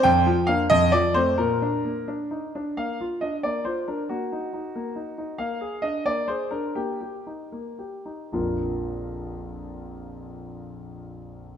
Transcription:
\new Staff \with { instrumentName = "Grand piano" } { \time 6/8 \key bes \major \tempo 4. = 86 << { g''4 f''8 ees''8 d''8 c''8 | bes'4. r4. | f''4 ees''8 d''8 c''8 bes'8 | ges'2. |
f''4 ees''8 d''8 c''8 bes'8 | g'2. | <bes,, f, f bes d' f' bes'>2.~ | <bes,, f, f bes d' f' bes'>2. | } \\ { f,8 f8 <bes d'>8 f,8 f8 <a c'>8 | bes,8 d'8 bes8 d'8 ees'8 d'8 | bes8 f'8 d'8 bes8 f'8 d'8 | bes8 ees'8 ees'8 bes8 ees'8 ees'8 |
bes8 aes'8 d'8 bes8 aes'8 d'8 | bes8 g'8 ees'8 bes8 g'8 ees'8 | r2. | r2. | } >> }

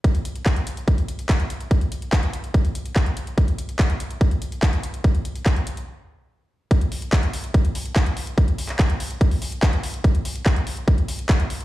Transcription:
\new DrumStaff \with { instrumentName = "Drums" } \drummode { \time 4/4 \tempo 4 = 144 <hh bd>16 hh16 hh16 hh16 <hc hh bd>16 hh16 hh16 hh16 <hh bd>16 hh16 hh16 hh16 <hc hh bd>16 hh16 hh16 hh16 | <hh bd>16 hh16 hh16 hh16 <hc hh bd>16 hh16 hh16 hh16 <hh bd>16 hh16 hh16 hh16 <hc hh bd>16 hh16 hh16 hh16 | <hh bd>16 hh16 hh16 hh16 <hc hh bd>16 hh16 hh16 hh16 <hh bd>16 hh16 hh16 hh16 <hc hh bd>16 hh16 hh16 hh16 | <hh bd>16 hh16 hh16 hh16 <hc hh bd>16 hh16 hh16 hh16 r4 r4 |
<hh bd>16 hh16 hho16 hh16 <hc hh bd>16 hh16 hho16 hh16 <hh bd>16 hh16 hho16 hh16 <hc hh bd>16 hh16 hho16 hh16 | <hh bd>16 hh16 hho16 <hc hh>16 <hc hh bd>16 hh16 hho16 hh16 <hh bd>16 hho16 hho16 hh16 <hc hh bd>16 hh16 hho16 hh16 | <hh bd>16 hh16 hho16 hh16 <hc hh bd>16 hh16 hho16 hh16 <hh bd>16 hh16 hho16 hh16 <hc hh bd>16 hh16 hho16 hh16 | }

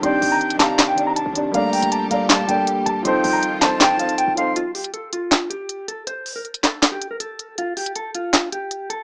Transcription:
<<
  \new Staff \with { instrumentName = "Flute" } { \time 4/4 \key f \mixolydian \tempo 4 = 159 g''4. bes''8 r2 | bes''4. bes''8 a''4 r4 | g''4. a''2 c'''8 | r1 |
r1 | r1 | }
  \new Staff \with { instrumentName = "Clean electric guitar" } { \time 4/4 \key f \mixolydian c'''8. bes''16 r8 a''8. g''8 bes''16 a''4 | f''8 g''8 a''8 f''4 g''4 a''8 | c'''8. bes''16 r8 a''8 g''8 f''8 g''8 f''8 | f'8 g'8 a'8 f'4 g'4 a'8 |
c''8. bes'16 r8 a'8. g'8 bes'16 a'4 | f'8 g'8 a'8 f'4 g'4 a'8 | }
  \new Staff \with { instrumentName = "Grand piano" } { \time 4/4 \key f \mixolydian <ees c' d' g' d''>4 r8 <ees c' d' g' f''>8. r16 <ees c' d' g' d''>8. r16 <ees c' d' g' d''>8 | <g a bes d' d''>4 r8 <g bes d' a' d''>8. r16 <g bes d' a' d''>4 r8 | <f c' ees' a' c''>4 r8 <f c' ees' a' c''>8. r16 <f c' ees' a' c''>8. r16 <f c' ees' a' c''>8 | r1 |
r1 | r1 | }
  \new Staff \with { instrumentName = "String section" } { \clef bass \time 4/4 \key f \mixolydian << { <c d'>1 | <bes, g'>1 | <ees f'>1 | r1 |
r1 | r1 | } \\ { ees1 | g1~ | g1 | r1 |
r1 | r1 | } >> }
  \new Staff \with { instrumentName = "808-style bass" } { \clef bass \time 4/4 \key f \mixolydian c,8 c,8 r8 c,4.~ c,16 c,8. | g,,8. g,,8. g,,4 g,,8 r8 g,,8 | f,,8 f,8 r8 f,,4.~ f,,16 f,,8. | r1 |
r1 | r1 | }
  \new DrumStaff \with { instrumentName = "Drums" } \drummode { \time 4/4 hh8 hho8 hh16 hh16 <hc hh sn>8 <hc hh sn>8 hh8 hh8 hh8 | hh8 <hh hho>16 hh16 hh8 hh8 <hc hh sn>8 hh8 hh8 hh8 | hh8 hho8 hh8 <hc hh sn>8 <hc hh sn>8 hh16 hh16 hh8 hh8 | hh8 <hh hho>16 hh16 hh8 hh8 <hc hh sn>8 hh8 hh8 hh8 |
hh8 hho8 hh16 hh16 <hc hh sn>8 <hc hh sn>8 hh8 hh8 hh8 | hh8 <hh hho>16 hh16 hh8 hh8 <hc hh sn>8 hh8 hh8 hh8 | }
>>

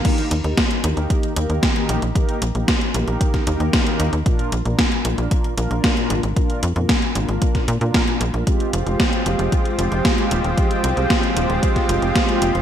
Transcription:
<<
  \new Staff \with { instrumentName = "Analog polysynth" } { \time 4/4 \key ees \major \tempo 4 = 114 <ees bes ees' g' bes'>8 r16 <ees bes ees' g' bes'>16 r8 <ees bes ees' g' bes'>4 <ees bes ees' g' bes'>8. <ees bes ees' g' bes'>8 r16 | <ees bes ees' g' bes'>8 r16 <ees bes ees' g' bes'>16 r8 <ees bes ees' g' bes'>4 <ees bes ees' g' bes'>8. <ees bes ees' g' bes'>8 r16 | <bes, bes d' f' bes'>8 r16 <bes, bes d' f' bes'>16 r8 <bes, bes d' f' bes'>4 <bes, bes d' f' bes'>8. <bes, bes d' f' bes'>8 r16 | <bes, bes d' f' bes'>8 r16 <bes, bes d' f' bes'>16 r8 <bes, bes d' f' bes'>4 r16 <bes, bes d' f' bes'>8 <bes, bes d' f' bes'>16 r16 <bes d' f' bes'>16 |
<aes c' f' g'>8 r16 <aes c' f' g'>16 r8 <aes c' f' g'>4 <aes c' f' g'>8. <aes c' f' g'>8 r16 | <aes c' f' g'>8 r16 <aes c' f' g'>16 r8 <aes c' f' g'>4 <aes c' f' g'>8. <aes c' f' g'>8 r16 | }
  \new Staff \with { instrumentName = "Analog synth pad" } { \time 4/4 \key ees \major r1 | r1 | r1 | r1 |
<f aes c' f' g'>1~ | <f aes c' f' g'>1 | }
  \new Staff \with { instrumentName = "Analog synth bass" } { \clef bass \time 4/4 \key ees \major r8 ees,16 ees,16 r8 ees,16 ees,16 r8 ees,16 ees,16 r8 bes,,16 bes,,16 | r8 bes,,16 bes,,16 r8 bes,,16 bes,,16 r8 ees,16 ees,16 r8 ees,16 ees,16 | r8 bes,,16 bes,,16 r8 bes,,16 bes,,16 r8 bes,,16 bes,,16 r8 aes,,16 aes,,16 | r8 f,16 f,16 r8 aes,,16 aes,,16 r8 bes,16 bes,16 r8 bes,,16 bes,,16 |
r8 f,,16 f,,16 r8 f,,16 f,,16 r8 f,,16 f,,16 r8 ees,,16 ees,,16 | r8 c,16 c,16 r8 ees,,16 ees,,16 r8 f,,16 f,,16 r8 f,,16 f,,16 | }
  \new DrumStaff \with { instrumentName = "Drums" } \drummode { \time 4/4 <cymc hh bd>16 hh16 hh16 hh16 <hh bd sn>16 hh16 hh16 hh16 <hh bd>16 hh16 hh16 hh16 <hh bd sn>16 hh16 hh16 hh16 | <hh bd>16 hh16 hh16 hh16 <hh bd sn>16 hh16 hh16 hh16 <hh bd>16 <hh bd sn>16 hh16 hh16 <hh bd sn>16 hh16 hh16 hh16 | <hh bd>16 hh16 hh16 hh16 <hh bd sn>16 hh16 hh16 hh16 <hh bd>16 hh16 hh16 hh16 <hh bd sn>16 hh16 hh16 hh16 | <hh bd>16 hh16 hh16 hh16 <hh bd sn>16 hh16 hh16 hh16 <hh bd>16 <hh bd sn>16 hh16 hh16 <hh bd sn>16 hh16 hh16 hh16 |
<hh bd>16 hh16 hh16 hh16 <hh bd sn>16 hh16 hh16 hh16 <hh bd>16 hh16 hh16 hh16 <hh bd sn>16 hh16 hh16 hh16 | <hh bd>16 hh16 hh16 hh16 <hh bd sn>16 hh16 hh16 hh16 <hh bd>16 <hh bd sn>16 hh16 hh16 <hh bd sn>16 hh16 hh16 hh16 | }
>>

